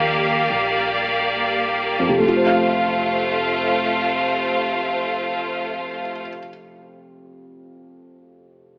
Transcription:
Already playing: upright bass D#2, grand piano F3 G3 D#4 F5, string section A#3 G4 D5 F5
0.50 upright bass A#1
1.99 grand piano F2
2.09 grand piano C3
2.18 grand piano A3
2.22 upright bass F1, string section A3 F4 C5 F5
2.27 grand piano F4
2.37 grand piano C5
2.46 grand piano F5

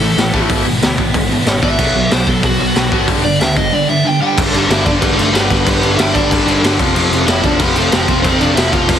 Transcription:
Already playing: distorted electric guitar A2 E3 A3 C#4 E4, overdriven electric guitar A4
0.01 picked electric bass A1, distorted electric guitar A2 E3
0.17 picked electric bass A1, distorted electric guitar A2 E3, snare, open hi-hat
0.33 picked electric bass A1, distorted electric guitar A2 E3 A3, kick
0.48 picked electric bass G#1, distorted electric guitar E2 G#2 B2 E3 G#3 B3 E4, kick, open hi-hat
0.65 picked electric bass G#1, distorted electric guitar E2 B2
0.82 picked electric bass D2, distorted electric guitar E2 B2, snare, open hi-hat
0.97 picked electric bass G#1, distorted electric guitar E2 G#2 B2 E3 G#3 B3 E4, kick
1.14 picked electric bass G#1, distorted electric guitar E2 B2, kick, open hi-hat
1.32 distorted electric guitar E2 B2
1.46 picked electric bass G#1, distorted electric guitar E2 B2, snare, open hi-hat
1.62 picked electric bass G#1, distorted electric guitar E2 B2 E3, overdriven electric guitar E5, kick
1.78 picked electric bass B1, distorted electric guitar B2 F#3 B3 D4, kick, crash
1.94 picked electric bass B1, distorted electric guitar B2 F#3
2.11 picked electric bass B1, distorted electric guitar B2 F#3, overdriven electric guitar C5, snare, open hi-hat
2.26 picked electric bass B1, distorted electric guitar B2 F#3 B3 D4, overdriven electric guitar A4, kick
2.43 picked electric bass B1, distorted electric guitar B2 F#3, overdriven electric guitar F#4, kick, open hi-hat
2.59 picked electric bass B1, distorted electric guitar B2 F#3
2.75 picked electric bass B1, distorted electric guitar B2 F#3, snare, open hi-hat
2.92 picked electric bass G#1, distorted electric guitar B2 F#3 B3, kick
3.06 picked electric bass G1, distorted electric guitar G2 D3 G3 B3 D4, kick, open hi-hat
3.24 picked electric bass G1, distorted electric guitar G2 D3, overdriven electric guitar D5
3.40 picked electric bass D2, distorted electric guitar G2 D3, overdriven electric guitar E5, snare, open hi-hat
3.55 picked electric bass G1, distorted electric guitar G2 D3 G3 B3 D4, overdriven electric guitar D#5, kick
3.73 distorted electric guitar G2 D3, overdriven electric guitar D5
3.88 distorted electric guitar G2 D3, overdriven electric guitar E5
4.05 distorted electric guitar G2 D3, overdriven electric guitar G5
4.22 distorted electric guitar G2 D3 G3, overdriven electric guitar G5
4.37 picked electric bass G1, distorted electric guitar G2 D3 G3, kick, crash
4.53 distorted electric guitar G2 D3 G3, crash
4.68 picked electric bass G1, distorted electric guitar G2 D3 G3, overdriven electric guitar E4 E5, snare, crash
4.85 picked electric bass G1, distorted electric guitar G2 D3 G3, overdriven electric guitar D4 D5, kick, crash
5.01 picked electric bass G1, distorted electric guitar G2 D3 G3, overdriven electric guitar B3 B4, kick, crash
5.16 picked electric bass G1, distorted electric guitar G2 D3 G3, overdriven electric guitar A3 A4, crash
5.32 picked electric bass G1, distorted electric guitar G2 D3 G3, overdriven electric guitar B3 B4, snare, crash
5.50 picked electric bass G1, distorted electric guitar G2 D3 G3, kick, crash
5.65 picked electric bass G1, distorted electric guitar G2 D3 G3, overdriven electric guitar B3 B4, kick, crash
5.82 picked electric bass G1, distorted electric guitar G2 D3 G3, crash
5.97 picked electric bass G1, distorted electric guitar G2 D3 G3, overdriven electric guitar E4 E5, snare, crash
6.13 picked electric bass G1, distorted electric guitar G2 D3 G3, overdriven electric guitar D4 D5, kick, crash
6.31 picked electric bass G1, distorted electric guitar G2 D3 G3, kick, crash
6.47 distorted electric guitar G2 D3 G3, crash
6.63 picked electric bass G1, distorted electric guitar G2 D3 G3, snare, crash
6.79 picked electric bass F1, distorted electric guitar F2 C3 F3, kick, crash
6.94 picked electric bass F1, distorted electric guitar F2 C3 F3, crash
7.11 distorted electric guitar F2 C3 F3, crash
7.27 picked electric bass F1, distorted electric guitar F2 C3 F3, overdriven electric guitar E4 E5, snare, crash
7.43 picked electric bass F1, distorted electric guitar F2 C3 F3, overdriven electric guitar D4 D5, kick, crash
7.59 picked electric bass F1, distorted electric guitar F2 C3 F3, overdriven electric guitar B3 B4, kick, crash
7.75 picked electric bass F1, distorted electric guitar F2 C3 F3, overdriven electric guitar A3 A4, crash
7.92 picked electric bass F1, distorted electric guitar F2 C3 F3, overdriven electric guitar C4 C5, snare, crash
8.08 picked electric bass F1, distorted electric guitar F2 C3 F3, kick, crash
8.22 picked electric bass F1, distorted electric guitar F2 C3 F3, overdriven electric guitar C4 C5, kick, crash
8.38 picked electric bass F1, distorted electric guitar F2 C3 F3, overdriven electric guitar D4 D5, crash
8.55 picked electric bass F1, distorted electric guitar F2 C3 F3, overdriven electric guitar E4 E5, snare, crash
8.72 picked electric bass F1, distorted electric guitar F2 C3 F3, overdriven electric guitar F4 F5, kick, crash
8.88 picked electric bass F1, distorted electric guitar F2 C3 F3, kick, crash

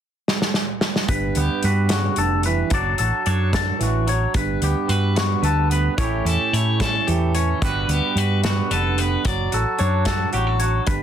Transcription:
0.28 snare
0.42 snare
0.54 snare
0.81 snare
0.96 snare
1.08 fingered electric bass G1, clean electric guitar G2 B4, kick, closed hi-hat
1.35 fingered electric bass D2, clean electric guitar B3 G4, closed hi-hat
1.63 fingered electric bass G2, clean electric guitar G3 F#4 B4, closed hi-hat
1.89 clean electric guitar C#3 F#4, snare, closed hi-hat
2.16 fingered electric bass F1, clean electric guitar D3 A4, closed hi-hat
2.43 clean electric guitar E3 B4, closed hi-hat
2.70 fingered electric bass F#1, clean electric guitar F#3 D4 F#4 D5, kick, closed hi-hat
2.75 clean electric guitar A4
2.98 fingered electric bass A1, clean electric guitar F#4 A4, closed hi-hat
3.26 fingered electric bass F#2, clean electric guitar D4 A4 C#5, closed hi-hat
3.53 clean electric guitar D3 A4, kick, snare, closed hi-hat
3.80 fingered electric bass A1, clean electric guitar E3 F#4, closed hi-hat
4.07 clean electric guitar F#3 C#5, closed hi-hat
4.34 fingered electric bass G1, clean electric guitar G2 B4, kick, closed hi-hat
4.62 fingered electric bass D2, clean electric guitar B3 G4, closed hi-hat
4.88 fingered electric bass G2, clean electric guitar G3 F#4 B4, closed hi-hat
5.16 clean electric guitar B3 F#4, snare, closed hi-hat
5.42 fingered electric bass D2, clean electric guitar D3 A4 B4, closed hi-hat
5.70 clean electric guitar B3 B4, closed hi-hat
5.98 fingered electric bass A1, clean electric guitar A2 A3 C#4 E4 G4 C#5, kick, closed hi-hat
6.25 fingered electric bass E2, clean electric guitar C#4 A4, closed hi-hat
6.53 fingered electric bass A2, clean electric guitar A3 E4 C#5, closed hi-hat
6.80 clean electric guitar C#4 A4, kick, snare, closed hi-hat
7.07 fingered electric bass E2, clean electric guitar E3 G4 A4, closed hi-hat
7.35 clean electric guitar C#4 C#5, closed hi-hat
7.62 fingered electric bass G1, clean electric guitar G2 G3 B3 F#4 B4, kick, closed hi-hat
7.88 fingered electric bass D2, clean electric guitar B3 G4, closed hi-hat
8.15 fingered electric bass G2, clean electric guitar G3 F#4 B4, closed hi-hat
8.44 clean electric guitar B3 F#4, snare, closed hi-hat
8.70 fingered electric bass F1, clean electric guitar D3 A4 B4, closed hi-hat
8.98 clean electric guitar B3 B4, closed hi-hat
9.25 fingered electric bass F#1, clean electric guitar F#3 D5, kick, closed hi-hat
9.52 fingered electric bass A1, clean electric guitar F#4 A4, closed hi-hat
9.79 fingered electric bass F#2, clean electric guitar D4 A4 C#5, closed hi-hat
10.05 clean electric guitar F#4 A4, kick, snare, closed hi-hat
10.33 fingered electric bass A1, clean electric guitar F#3 F#4 G4, closed hi-hat
10.47 clean electric guitar A4
10.60 clean electric guitar F#4 C#5, closed hi-hat
10.87 fingered electric bass G1, clean electric guitar G2 B4, kick, closed hi-hat

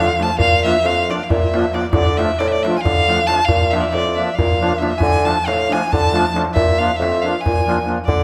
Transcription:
Already playing: bassoon D3, violin F5
0.00 accordion F4
0.18 accordion F3 A3 D4 F4, darbuka tek
0.22 violin A5
0.38 bassoon A#2, violin F5, darbuka dum
0.53 darbuka tek
0.63 accordion F3 A#3 D4 F4, violin E5, darbuka tek
0.76 darbuka tek
0.84 bassoon F2, violin F5, darbuka tek
1.08 accordion F3 A#3 D4 F4, violin D5, darbuka tek
1.23 violin F5
1.29 bassoon A#2, violin E5, darbuka dum
1.53 accordion F3 A#3 D4 F4, darbuka tek
1.73 accordion F3 A#3 D4 F4, violin D5, darbuka tek
1.91 bassoon D3, violin D5, darbuka dum
2.06 darbuka tek
2.17 accordion F3 A3 D4 F4, violin E5, darbuka tek
2.31 darbuka tek
2.39 bassoon A2, violin D5, darbuka tek
2.48 violin E5
2.52 violin D5
2.63 accordion F3 A3 D4 F4, violin E5, darbuka tek
2.78 violin F5 G#5
2.85 bassoon D3, darbuka dum
3.07 accordion F3 A3 D4 F4, darbuka tek
3.27 accordion F3 A3 D4 F4, violin A5, darbuka tek
3.45 bassoon A#2, violin F5, darbuka dum
3.61 darbuka tek
3.71 accordion F3 A#3 D4 F4, violin E5, darbuka tek
3.80 violin D5 E5, darbuka tek
3.91 bassoon F2, violin D5, darbuka tek
4.07 darbuka tek
4.14 accordion F3 A#3 D4 F4, violin E5
4.35 bassoon A#2, violin F5, darbuka dum
4.52 darbuka tek
4.60 accordion F3 A#3 D4 F4, darbuka tek
4.73 darbuka tek
4.78 accordion F3 A#3 D4 F4, violin E5
4.82 darbuka tek
4.98 violin G#5, darbuka dum
5.02 bassoon D3
5.15 darbuka tek
5.24 accordion F3 A3 D4 F4, violin A5, darbuka tek
5.37 darbuka tek
5.46 bassoon A2, violin F5, darbuka tek
5.69 accordion F3 A3 D4 F4, violin G#5, darbuka tek
5.92 bassoon D3, violin A5, darbuka dum
6.12 accordion F3 A3 D4 F4, darbuka tek
6.33 accordion F3 A3 D4 F4, darbuka tek
6.54 bassoon A#2, violin E5, darbuka dum
6.70 darbuka tek
6.78 accordion F3 A#3 D4 F4, violin F5
6.91 darbuka tek
6.96 bassoon F2, violin E5
7.02 darbuka tek
7.22 accordion F3 A#3 D4 F4, violin F5
7.41 violin G#5
7.46 bassoon A#2, darbuka dum
7.66 accordion F3 A#3 D4 F4, darbuka tek
7.86 accordion F3 A#3 D4 F4, darbuka tek
8.05 bassoon D3, violin D5, darbuka dum
8.20 darbuka tek

